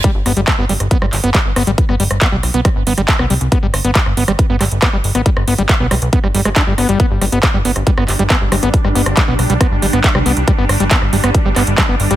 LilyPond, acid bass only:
\new Staff \with { instrumentName = "Acid bass" } { \clef bass \time 4/4 \key g \major \tempo 4 = 138 g16 r16 b16 g16 r16 b16 g16 r16 b16 g16 r16 b16 g16 r16 b16 g16 | r16 b16 g16 r16 b16 g16 r16 b16 g16 r16 b16 g16 r16 b16 g16 r16 | b16 g16 r16 b16 g16 r16 b16 g16 r16 b16 g16 r16 b16 g16 r16 b16 | g16 r16 b16 g16 r16 b16 g16 r16 b16 g16 g16 aes16 d'16 g16 b16 g16 |
b16 r16 g16 b16 r16 g16 b16 r16 g16 b16 r16 g16 b16 r16 g16 b16 | r16 g16 b16 r16 g16 b16 r16 g16 b16 r16 g16 b16 r16 g16 b16 r16 | g16 b16 r16 g16 b16 r16 g16 b16 r16 g16 b16 r16 g16 b16 r16 g16 | }